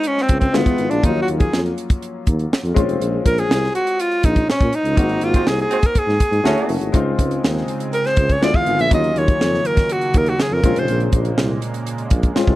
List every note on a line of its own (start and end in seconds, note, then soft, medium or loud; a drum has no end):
0.00 0.51 G#3 medium
0.00 0.51 C4 medium
0.00 0.51 D#4 medium
0.00 0.52 F4 medium
0.00 closed hi-hat medium
0.07 0.23 C#4 medium
0.18 snare soft
0.22 0.38 C4 medium
0.29 0.47 C#2 medium
0.29 kick medium
0.29 closed hi-hat medium
0.39 0.57 C4 medium
0.39 kick medium
0.39 closed hi-hat soft
0.53 0.63 D2 loud
0.53 1.03 G#3 medium
0.53 1.03 B3 medium
0.53 0.91 B3 medium
0.53 1.03 E4 medium
0.53 1.03 F4 medium
0.53 snare loud
0.66 0.75 E2 medium
0.66 kick medium
0.66 closed hi-hat soft
0.78 0.88 G#1 medium
0.78 closed hi-hat medium
0.90 1.00 A#1 medium
0.90 1.07 D4 medium
0.90 closed hi-hat soft
1.02 1.21 D#2 loud
1.02 1.09 F3 soft
1.02 2.72 A#3 medium
1.02 2.73 C#4 medium
1.02 1.21 D#4 medium
1.02 2.73 F4 medium
1.02 kick loud
1.02 closed hi-hat medium
1.08 2.75 F#3 medium
1.22 1.29 F#4 medium
1.28 1.46 D#2 medium
1.28 closed hi-hat medium
1.39 1.61 G#4 medium
1.39 kick medium
1.39 closed hi-hat soft
1.53 1.71 F2 medium
1.53 snare loud
1.66 closed hi-hat soft
1.78 closed hi-hat medium
1.90 kick medium
1.90 closed hi-hat medium
2.02 closed hi-hat medium
2.27 2.45 D#2 medium
2.27 kick medium
2.27 closed hi-hat medium
2.39 closed hi-hat soft
2.53 snare loud
2.64 2.73 F2 medium
2.64 closed hi-hat soft
2.74 2.85 A#1 loud
2.74 4.68 G#3 medium
2.74 4.69 C4 medium
2.74 4.69 C#4 medium
2.74 4.69 F4 medium
2.74 kick loud
2.74 closed hi-hat medium
2.88 2.97 F1 medium
2.88 closed hi-hat soft
3.00 3.18 A#1 medium
3.00 closed hi-hat medium
3.25 3.43 A#1 medium
3.25 3.40 A#4 loud
3.25 kick medium
3.25 closed hi-hat medium
3.38 3.74 G#4 loud
3.38 closed hi-hat soft
3.49 3.68 C2 medium
3.49 snare loud
3.64 snare soft
3.75 4.02 F#4 loud
3.75 closed hi-hat medium
3.87 closed hi-hat medium
3.99 4.26 F4 loud
3.99 closed hi-hat medium
4.12 closed hi-hat soft
4.23 4.42 A#1 medium
4.23 4.49 D#4 medium
4.23 kick medium
4.23 closed hi-hat medium
4.36 kick medium
4.36 closed hi-hat soft
4.48 4.53 A#2 soft
4.48 4.76 C#4 medium
4.48 snare medium
4.61 4.70 A#2 medium
4.61 kick medium
4.61 closed hi-hat soft
4.73 5.25 D#4 medium
4.73 closed hi-hat medium
4.84 4.94 C#2 medium
4.84 closed hi-hat soft
4.95 5.16 G#1 loud
4.95 6.41 A#3 medium
4.95 6.42 C4 medium
4.95 6.42 D#4 medium
4.95 6.43 F#4 medium
4.95 kick loud
4.95 closed hi-hat medium
5.09 closed hi-hat soft
5.21 5.40 G#1 medium
5.21 5.49 F4 medium
5.21 closed hi-hat medium
5.34 5.45 G#3 medium
5.34 5.45 C4 medium
5.34 5.45 F#4 medium
5.34 5.45 C5 medium
5.34 kick medium
5.34 closed hi-hat soft
5.46 5.64 C2 medium
5.46 5.59 G#4 medium
5.46 snare loud
5.59 5.88 G#4 medium
5.59 closed hi-hat soft
5.70 5.79 G#3 medium
5.70 5.78 C4 medium
5.70 5.79 F#4 medium
5.70 5.78 C5 loud
5.70 closed hi-hat medium
5.83 6.00 A#4 medium
5.83 kick medium
5.83 closed hi-hat medium
5.95 6.71 G#4 medium
5.95 kick medium
5.95 closed hi-hat medium
6.07 6.17 G#2 medium
6.07 snare soft
6.20 kick medium
6.20 closed hi-hat medium
6.31 6.41 G#2 medium
6.31 closed hi-hat soft
6.43 6.53 D2 medium
6.43 6.94 A3 medium
6.43 6.76 A3 loud
6.43 6.94 C#4 medium
6.43 6.76 C#4 loud
6.43 6.94 E4 medium
6.43 6.94 F#4 medium
6.43 6.76 F#4 loud
6.43 6.76 C#5 loud
6.43 snare loud
6.58 closed hi-hat soft
6.68 6.78 F#1 loud
6.68 open hi-hat medium
6.81 6.91 G#1 medium
6.81 closed hi-hat soft
6.92 7.12 C#2 loud
6.92 8.39 C#3 medium
6.92 8.38 G#3 medium
6.92 8.88 G#3 medium
6.92 8.39 C4 medium
6.92 8.39 D#4 medium
6.92 8.40 F4 medium
6.92 10.59 G#4 medium
6.92 kick loud
6.92 closed hi-hat medium
7.19 7.37 C#2 medium
7.19 kick medium
7.19 closed hi-hat medium
7.31 closed hi-hat soft
7.43 7.62 D#2 medium
7.43 snare loud
7.57 snare soft
7.68 closed hi-hat medium
7.80 closed hi-hat medium
7.93 8.07 A#4 medium
7.93 closed hi-hat medium
8.04 8.33 C5 loud
8.04 snare soft
8.04 closed hi-hat soft
8.16 8.36 C#2 medium
8.16 kick medium
8.16 closed hi-hat medium
8.29 8.45 C#5 loud
8.29 kick medium
8.29 closed hi-hat soft
8.40 8.52 D2 medium
8.40 8.90 D3 medium
8.40 8.91 G#3 medium
8.40 8.91 B3 medium
8.40 8.91 E4 medium
8.40 8.91 F4 medium
8.40 8.57 D5 medium
8.40 snare loud
8.54 8.63 E2 medium
8.54 8.82 F5 medium
8.54 kick medium
8.66 8.76 G#1 medium
8.66 closed hi-hat medium
8.79 8.88 A#1 medium
8.79 8.92 E5 medium
8.79 closed hi-hat soft
8.89 9.09 D#2 loud
8.89 12.55 C#3 medium
8.89 10.61 D#3 medium
8.89 10.61 F#3 medium
8.89 10.60 F#3 medium
8.89 10.60 A#3 medium
8.89 10.60 C#4 medium
8.89 10.61 F4 medium
8.89 kick loud
8.89 closed hi-hat medium
8.93 9.19 D#5 loud
9.04 closed hi-hat soft
9.15 9.33 D#2 loud
9.15 9.68 C#5 loud
9.15 closed hi-hat medium
9.28 kick medium
9.28 closed hi-hat soft
9.41 9.59 F2 loud
9.41 snare loud
9.54 snare soft
9.65 9.93 A#4 loud
9.65 closed hi-hat medium
9.77 kick medium
9.77 snare soft
9.77 closed hi-hat medium
9.89 10.19 F#4 medium
9.89 closed hi-hat medium
10.01 closed hi-hat soft
10.14 10.32 D#2 medium
10.14 10.30 A#4 medium
10.14 kick medium
10.14 closed hi-hat medium
10.26 10.42 F#4 medium
10.26 closed hi-hat soft
10.40 10.54 G#4 medium
10.40 snare loud
10.51 10.60 F2 medium
10.51 10.80 A#4 medium
10.63 10.73 A#1 loud
10.63 12.55 A#2 medium
10.63 12.32 G#3 medium
10.63 12.55 G#3 medium
10.63 12.55 A#3 medium
10.63 12.32 C4 medium
10.63 12.33 C#4 medium
10.63 12.33 F4 medium
10.63 kick loud
10.63 closed hi-hat medium
10.76 10.85 F1 medium
10.76 11.02 C5 medium
10.76 closed hi-hat medium
10.88 11.07 A#1 medium
10.88 closed hi-hat medium
11.00 closed hi-hat soft
11.12 11.31 A#1 medium
11.12 kick medium
11.12 closed hi-hat medium
11.25 closed hi-hat medium
11.38 11.56 C2 medium
11.38 snare loud
11.62 closed hi-hat medium
11.74 closed hi-hat medium
11.87 closed hi-hat medium
11.98 closed hi-hat soft
12.10 12.29 A#1 medium
12.10 kick medium
12.10 closed hi-hat medium
12.23 kick medium
12.23 closed hi-hat soft
12.35 12.55 G#3 medium
12.35 12.55 C4 medium
12.35 12.55 C#4 medium
12.35 12.55 F4 medium
12.35 snare loud
12.47 12.55 C2 medium
12.47 kick medium